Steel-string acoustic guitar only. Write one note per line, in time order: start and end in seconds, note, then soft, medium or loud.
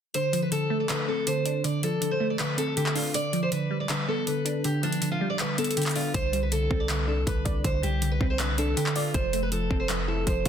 0.14 0.41 C5 loud
0.42 0.51 B4 medium
0.52 0.78 A4 medium
0.80 0.88 D5 medium
0.90 1.06 B4 medium
1.08 1.24 A4 medium
1.27 1.62 C5 medium
1.64 1.81 D5 medium
1.83 2.10 A4 medium
2.11 2.27 C5 medium
2.30 2.38 D5 medium
2.39 2.55 B4 loud
2.58 2.74 A4 medium
2.77 2.93 G4 medium
2.96 3.12 F4 medium
3.15 3.41 D5 loud
3.43 3.51 C5 medium
3.52 3.78 B4 medium
3.80 3.88 D5 medium
3.90 4.06 B4 medium
4.08 4.24 A4 medium
4.27 4.62 B4 medium
4.65 4.81 G4 medium
4.83 5.10 D4 medium
5.12 5.28 F4 medium
5.30 5.38 D5 medium
5.40 5.56 B4 medium
5.58 5.74 A4 medium
5.77 5.93 G4 medium
5.96 6.12 F4 medium
6.15 6.41 C5 loud
6.43 6.51 B4 medium
6.52 6.78 A4 medium
6.80 6.88 D5 medium
6.90 7.06 B4 medium
7.08 7.24 A4 medium
7.27 7.62 B4 medium
7.64 7.80 C5 medium
7.83 8.10 G4 medium
8.12 8.28 B4 medium
8.30 8.38 C5 medium
8.39 8.56 B4 loud
8.58 8.74 A4 medium
8.77 8.93 G4 medium
8.96 9.12 F4 medium
9.14 9.41 C5 loud
9.43 9.51 B4 medium
9.52 9.78 A4 medium
9.80 9.88 C5 medium
9.89 10.05 B4 medium
10.08 10.24 A4 medium
10.27 10.48 C5 medium